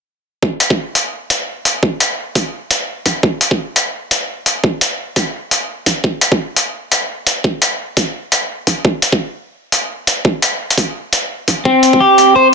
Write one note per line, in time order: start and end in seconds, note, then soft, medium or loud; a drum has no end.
0.43 kick loud
0.60 closed hi-hat medium
0.70 kick medium
0.95 closed hi-hat medium
1.30 closed hi-hat medium
1.65 closed hi-hat medium
1.83 kick loud
2.00 closed hi-hat medium
2.35 kick loud
2.35 closed hi-hat medium
2.71 closed hi-hat medium
3.06 kick medium
3.06 closed hi-hat medium
3.23 kick loud
3.41 closed hi-hat medium
3.51 kick loud
3.76 closed hi-hat medium
4.11 closed hi-hat medium
4.46 closed hi-hat medium
4.64 kick loud
4.81 closed hi-hat medium
5.16 kick loud
5.16 closed hi-hat medium
5.51 closed hi-hat medium
5.86 kick medium
5.86 closed hi-hat medium
6.04 kick loud
6.21 closed hi-hat medium
6.32 kick medium
6.56 closed hi-hat medium
6.92 closed hi-hat medium
7.27 closed hi-hat medium
7.44 kick loud
7.62 closed hi-hat medium
7.97 kick medium
7.97 closed hi-hat medium
8.32 closed hi-hat medium
8.67 kick medium
8.67 closed hi-hat medium
8.85 kick loud
9.02 closed hi-hat medium
9.12 kick medium
9.72 closed hi-hat medium
10.07 closed hi-hat medium
10.25 kick loud
10.42 closed hi-hat medium
10.70 closed hi-hat soft
10.78 kick medium
10.78 closed hi-hat medium
11.13 closed hi-hat medium
11.48 kick medium
11.48 closed hi-hat medium
11.65 11.99 C4 medium
11.65 kick loud
11.83 closed hi-hat medium
11.93 kick medium
12.00 12.34 G4 medium
12.18 closed hi-hat medium
12.36 12.47 C5 medium